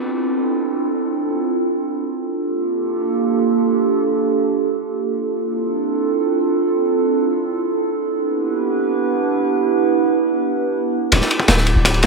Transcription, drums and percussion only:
11.12 kick loud
11.12 ride medium
11.21 snare soft
11.31 ride medium
11.40 kick medium
11.48 snare loud
11.48 ride medium
11.57 snare medium
11.67 ride medium
11.85 kick loud
11.85 ride medium
11.94 ride soft
12.03 ride medium

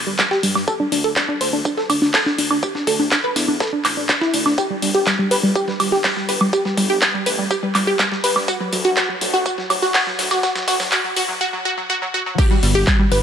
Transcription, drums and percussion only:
0.19 kick loud
0.19 snare loud
0.19 clap loud
0.19 tambourine medium
0.31 snare medium
0.43 open hi-hat loud
0.43 tambourine medium
0.56 snare soft
0.56 high woodblock medium
0.68 kick loud
0.68 tambourine medium
0.92 open hi-hat loud
0.92 tambourine medium
1.04 closed hi-hat soft
1.16 kick loud
1.16 snare loud
1.16 clap loud
1.16 tambourine medium
1.41 open hi-hat loud
1.41 tambourine medium
1.65 kick loud
1.65 tambourine medium
1.77 snare soft
1.90 open hi-hat loud
1.90 tambourine medium
1.90 high woodblock medium
2.02 snare soft
2.14 kick loud
2.14 snare loud
2.14 clap loud
2.14 open hi-hat medium
2.26 snare soft
2.38 open hi-hat loud
2.38 tambourine medium
2.51 high woodblock medium
2.63 kick loud
2.63 tambourine medium
2.75 snare soft
2.87 kick medium
2.87 open hi-hat loud
2.87 tambourine medium
3.11 kick loud
3.11 snare loud
3.11 clap loud
3.11 tambourine medium
3.36 snare loud
3.36 open hi-hat loud
3.36 tambourine medium
3.60 kick loud
3.60 snare loud
3.60 tambourine medium
3.85 clap medium
3.85 open hi-hat loud
3.85 tambourine medium
3.85 high woodblock medium
4.09 kick loud
4.09 snare loud
4.09 clap loud
4.09 tambourine medium
4.21 snare medium
4.34 open hi-hat loud
4.34 tambourine medium
4.46 snare soft
4.46 high woodblock medium
4.58 kick loud
4.58 tambourine medium
4.82 open hi-hat loud
4.82 tambourine medium
4.95 closed hi-hat soft
5.07 kick loud
5.07 snare loud
5.07 clap loud
5.07 tambourine medium
5.31 open hi-hat loud
5.31 tambourine medium
5.55 kick loud
5.55 tambourine medium
5.68 snare soft
5.80 open hi-hat loud
5.80 tambourine medium
5.80 high woodblock medium
5.92 snare soft
6.04 kick loud
6.04 snare loud
6.04 clap loud
6.04 open hi-hat medium
6.17 snare soft
6.29 open hi-hat loud
6.29 tambourine medium
6.41 high woodblock medium
6.53 kick loud
6.53 tambourine medium
6.65 snare soft
6.77 kick medium
6.77 open hi-hat medium
6.77 tambourine medium
7.02 kick loud
7.02 snare loud
7.02 clap loud
7.02 tambourine medium
7.26 open hi-hat loud
7.26 tambourine medium
7.51 kick loud
7.51 tambourine medium
7.75 clap medium
7.75 open hi-hat loud
7.75 tambourine medium
7.75 high woodblock medium
7.99 kick loud
7.99 snare loud
7.99 clap loud
7.99 tambourine medium
8.12 snare medium
8.24 open hi-hat loud
8.24 tambourine medium
8.36 snare soft
8.36 high woodblock medium
8.48 kick loud
8.48 tambourine medium
8.73 open hi-hat loud
8.73 tambourine medium
8.85 closed hi-hat soft
8.97 kick loud
8.97 snare loud
8.97 clap loud
8.97 tambourine medium
9.21 open hi-hat loud
9.21 tambourine medium
9.46 kick loud
9.46 tambourine medium
9.58 snare soft
9.70 open hi-hat loud
9.70 tambourine medium
9.70 high woodblock medium
9.82 snare soft
9.94 kick loud
9.94 snare loud
9.94 clap loud
9.94 open hi-hat medium
10.07 snare soft
10.19 snare loud
10.19 open hi-hat loud
10.19 tambourine medium
10.31 snare loud
10.31 tambourine medium
10.31 high woodblock medium
10.43 kick loud
10.43 snare loud
10.43 tambourine medium
10.56 snare loud
10.56 tambourine medium
10.68 kick medium
10.68 snare loud
10.68 open hi-hat loud
10.68 tambourine medium
10.80 snare loud
10.80 tambourine medium
10.92 kick loud
10.92 snare loud
10.92 clap loud
10.92 open hi-hat medium
10.92 tambourine medium
11.16 open hi-hat loud
11.16 tambourine medium
12.38 kick loud
12.38 crash loud
12.38 tambourine medium
12.63 open hi-hat loud
12.63 tambourine medium
12.75 closed hi-hat soft
12.87 kick loud
12.87 snare loud
12.87 clap loud
12.87 tambourine medium
13.12 open hi-hat medium
13.12 tambourine medium

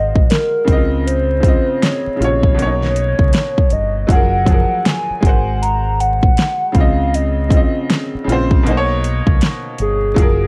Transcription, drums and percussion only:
0.16 kick medium
0.30 snare loud
0.30 closed hi-hat medium
0.68 kick loud
0.68 closed hi-hat medium
1.07 closed hi-hat medium
1.43 kick loud
1.43 closed hi-hat medium
1.83 snare loud
1.83 closed hi-hat medium
2.22 closed hi-hat medium
2.43 kick medium
2.59 closed hi-hat medium
2.83 snare soft
2.96 closed hi-hat medium
3.19 kick medium
3.33 snare loud
3.33 closed hi-hat medium
3.58 kick medium
3.70 closed hi-hat medium
4.09 kick loud
4.09 closed hi-hat medium
4.46 kick loud
4.46 closed hi-hat medium
4.85 snare loud
4.85 closed hi-hat medium
5.23 kick loud
5.23 closed hi-hat medium
5.63 closed hi-hat medium
6.00 closed hi-hat medium
6.23 kick medium
6.37 snare loud
6.37 closed hi-hat medium
6.75 kick loud
6.75 closed hi-hat medium
7.14 closed hi-hat medium
7.50 kick loud
7.50 closed hi-hat medium
7.90 snare loud
7.90 closed hi-hat medium
8.29 closed hi-hat medium
8.51 kick medium
8.67 closed hi-hat medium
9.04 closed hi-hat medium
9.27 kick loud
9.41 snare loud
9.41 closed hi-hat medium
9.78 closed hi-hat medium
10.16 kick loud
10.16 closed hi-hat medium

